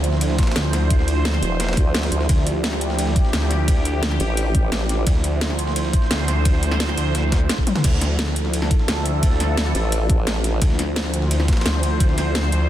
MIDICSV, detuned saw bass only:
0, 0, Header, 1, 2, 480
1, 0, Start_track
1, 0, Key_signature, -1, "minor"
1, 0, Tempo, 346821
1, 1253, Time_signature, 4, 2, 24, 8
1, 17567, End_track
2, 0, Start_track
2, 0, Title_t, "Detuned saw bass"
2, 0, Program_c, 0, 39
2, 0, Note_on_c, 0, 38, 103
2, 514, Note_off_c, 0, 38, 0
2, 773, Note_on_c, 0, 38, 94
2, 1954, Note_off_c, 0, 38, 0
2, 3172, Note_on_c, 0, 38, 102
2, 4353, Note_off_c, 0, 38, 0
2, 4612, Note_on_c, 0, 38, 95
2, 5793, Note_off_c, 0, 38, 0
2, 7013, Note_on_c, 0, 38, 102
2, 8194, Note_off_c, 0, 38, 0
2, 8452, Note_on_c, 0, 38, 96
2, 9633, Note_off_c, 0, 38, 0
2, 9652, Note_on_c, 0, 38, 102
2, 10354, Note_off_c, 0, 38, 0
2, 10852, Note_on_c, 0, 38, 100
2, 12034, Note_off_c, 0, 38, 0
2, 12292, Note_on_c, 0, 38, 95
2, 13473, Note_off_c, 0, 38, 0
2, 14693, Note_on_c, 0, 38, 102
2, 15874, Note_off_c, 0, 38, 0
2, 16132, Note_on_c, 0, 38, 93
2, 17313, Note_off_c, 0, 38, 0
2, 17333, Note_on_c, 0, 38, 104
2, 17567, Note_off_c, 0, 38, 0
2, 17567, End_track
0, 0, End_of_file